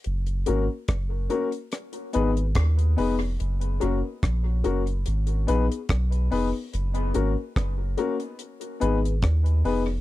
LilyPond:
<<
  \new Staff \with { instrumentName = "Grand piano" } { \time 4/4 \key fis \major \tempo 4 = 72 r8 <ais cis' fis' ais'>16 r8. <ais cis' fis' ais'>16 r8. <b dis' gis' b'>16 r8. <b dis' gis' b'>16 r16 | r8 <ais cis' fis' ais'>16 r8. <ais cis' fis' ais'>16 r8. <b dis' gis' b'>16 r8. <b dis' gis' b'>16 r16 | r8 <ais cis' fis' ais'>16 r8. <ais cis' fis' ais'>16 r8. <b dis' gis' b'>16 <gis' b'>16 r8 <b dis' gis' b'>16 r16 | }
  \new Staff \with { instrumentName = "Sub bass" } { \clef bass \time 4/4 \key fis \major fis,,8 gis,,16 r16 fis,,8 r4 gis,,8 dis,8 eis,,8 | fis,,8 fis,,16 r16 ais,,8 fis,,8 gis,,8 ais,,16 r16 b,,8 eis,,16 r16 | fis,,8 gis,,16 r16 fis,,8 r4 gis,,8 dis,8 eis,,8 | }
  \new DrumStaff \with { instrumentName = "Drums" } \drummode { \time 4/4 hh16 hh16 hh8 <hh bd ss>8 hh16 hh16 <hh ss>16 hh16 hh16 hh16 <hh bd ss>16 hh16 hho8 | hh16 hh16 hh8 <hh bd ss>8 hh16 hh16 hh16 hh16 hh16 hh16 <hh bd ss>16 hh16 hho8 | hh16 hh16 hh8 <hh bd ss>8 hh16 hh16 hh16 hh16 hh16 hh16 <hh bd ss>16 hh16 hho8 | }
>>